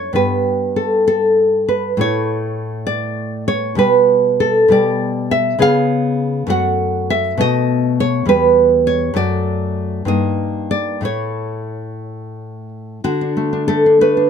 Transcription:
Already playing: F#2 A#3 E4 C#5
0.13 G2 B3 G4 B4
0.76 A4
1.07 A4
1.68 B4
1.97 A2 A3 E4 C#5
2.87 D5
3.48 C#5
3.75 B2 G3 G4 B4
4.40 A4
4.68 B2 G3 G4 D5
5.31 E5
5.59 C#3 B3 G#4 F5
6.47 F#2 A3 F#4 F#5
7.10 E5
7.37 B2 A3 F#4 D#5
8.00 C#5
8.26 E2 G3 G4 B4
8.87 C#5
9.14 F#2 A3 F#4 D5
10.05 G2 A#3 D#4 D#5
10.71 D5
11.01 A2 A3 E4
11.05 C#5
13.04 D3 F#4
13.21 D4
13.37 A3
13.53 D4
13.68 A3 A4
13.86 D4
14.01 A3 B4
14.17 D4

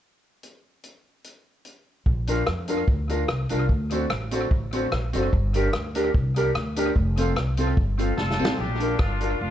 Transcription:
0.43 closed hi-hat
0.84 closed hi-hat
1.24 closed hi-hat
1.65 closed hi-hat
2.06 A#1, kick
2.27 D4 F4 A#4, closed hi-hat, tambourine
2.47 F2, cross-stick
2.68 D4 F4 A#4, closed hi-hat, tambourine
2.88 D2, kick
3.09 D4 F4 A#4, closed hi-hat, tambourine
3.28 C2, cross-stick
3.49 C2 D4 F4 A#4, closed hi-hat, tambourine
3.69 D2, kick
3.90 C4 D4 F#4 A4 C5, closed hi-hat, tambourine
4.10 A1, cross-stick
4.31 C4 D4 F#4 A4 C5, closed hi-hat, tambourine
4.51 A1, kick
4.73 C4 D4 F#4 A4 C5, closed hi-hat, tambourine
4.92 A#1 F#4 C5, cross-stick
5.13 F#1 C4 D4 F#4 A4 C5, closed hi-hat, tambourine
5.33 G1, kick
5.54 D4 G4 A#4, closed hi-hat, tambourine
5.73 D2, cross-stick
5.95 D4 G4 A#4, closed hi-hat, tambourine
6.14 C2, kick
6.36 D4 G4 A#4, closed hi-hat, tambourine
6.55 D2, cross-stick
6.76 D4 G4 A#4, closed hi-hat, tambourine
6.96 F1, kick
7.17 C4 F4 A4, closed hi-hat, tambourine
7.36 C2, cross-stick
7.57 C4 F4 A4, closed hi-hat, tambourine
7.77 G1, kick
7.98 C4 F4 A4, closed hi-hat, tambourine
8.17 F1 F4 A4, snare
8.31 snare
8.39 A1 C4 F4 A4, tambourine
8.45 snare
8.58 A#1 D4 G4
8.80 D4 F4 A#4, closed hi-hat
8.99 G1 D4 F4, kick, cross-stick
9.20 D4 F4 A#4, closed hi-hat
9.41 F1 D4 F4

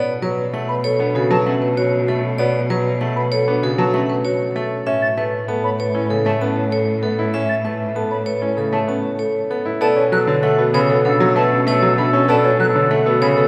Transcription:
Already playing: B2 B3 C#5 D5
0.22 F#3 B4 C#5
0.54 A3 F#5
0.69 B4 B5
0.84 A4 C#5
1.00 B3 D4
1.15 C#3 F#4 A4
1.31 F#3 B4 A5
1.46 A3 C#4 F#5
1.62 B4
1.77 F#4 C#5
2.08 A3 A4
2.38 B3 C#5 D5
2.70 F#3 B4 C#5
3.01 A3 F#5
3.16 B4 B5
3.32 A4 C#5
3.48 B3 D4
3.63 C#3 F#4 A4
3.78 F#3 B4 A5
3.94 A3 C#4 F#5
4.09 B4
4.25 F#4 C#5
4.56 A3 A4
4.86 A2 C#4 E5
5.02 A6
5.17 A3 B4 E5
5.48 B3 A4 A5
5.63 C#5 B5
5.79 B4 C#5
5.95 C#4 E4
6.10 C#3 A4
6.25 A3 C#5 A5
6.41 B3 C#4 A5
6.56 C#5
6.72 A4 C#5
7.03 B3 A4
7.19 E4
7.33 C#4 E5
7.49 A6
7.65 A3 B4 E5
7.96 B3 A4 A5
8.11 C#5 B5
8.26 B4 C#5
8.41 C#4 E4
8.57 C#3 A4
8.72 A3 C#5 A5
8.88 B3 C#4 A5
9.03 C#5
9.19 A4 C#5
9.51 B3 A4
9.66 E4
9.81 B2 B3 A4 D5 A5
9.96 C#4 C#5
10.12 F#3 A4 B4 F#6
10.27 D3 C#5
10.43 A3 A4 F#5
10.58 B3 F#4
10.74 C#3 A4 B4 C#5 B5
10.89 B3 A4
11.05 C#3 D4 A4 F#5
11.20 F#3 F#4
11.36 A3 B4 F#5 A5
11.42 A4
11.52 C#4
11.67 A3 B4 C#5
11.73 A4
11.82 F#3 F#4
11.98 A3 D4 A4 B5
12.05 A4
12.13 C#4
12.28 B3 A4 D5 A5
12.37 A4
12.44 C#4 C#5
12.60 F#3 A4 B4 F#6
12.69 A4
12.75 D3 C#5
12.91 A3 A4 F#5
13.01 A4
13.06 B3 F#4
13.21 C#3 B4 C#5 B5
13.32 A4
13.37 B3 A4

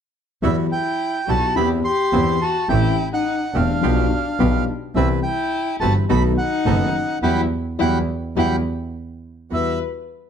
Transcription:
0.42 E2 E3 F#3 G3 B3 E4 F#4 G4 E5
0.71 E4 G5
1.27 B1 B2 F#3 G3 B3 E4 F#4 G4 A5
1.55 E2 E3 B3 C4 E4 G4 B5
1.84 G4 C6
2.12 E2 E3 B3 C4 E4 G4
2.42 F#4 A5
2.69 A1 A2 E3 A3 C4 E4 G4 G5
3.13 D#4 F#5
3.54 E1 E2 E3 A3 C4 D4 G4 F5
3.81 B1 B2 F3 B3 D4 F4 G4
4.39 B1 B2 F3 B3 D4 F4 G4
4.95 C2 C3 E3 B3 C4 E4 G4 B4 E5
5.23 E4 G5
5.80 G1 G2 E3 B3 C4 E4 F#4 G4 B4 A5
6.09 B1 B2 D#3 A3 B3 D#4 F#4 A4 B5
6.38 D#4 F#5
6.65 F#1 F#2 D#3 A3 B3 D#4 F#4 A4
7.22 E2 E3 F#3 G3 E4 F#4 G4 F#5 G5 B5
7.78 E2 E3 F#3 G3 E4 F#4 G4 F#5 G5 B5
8.36 E2 E3 F#3 G3 E4 F#4 G4 F#5 G5 B5
9.50 E2 G3 E4 F#4 B4 E5

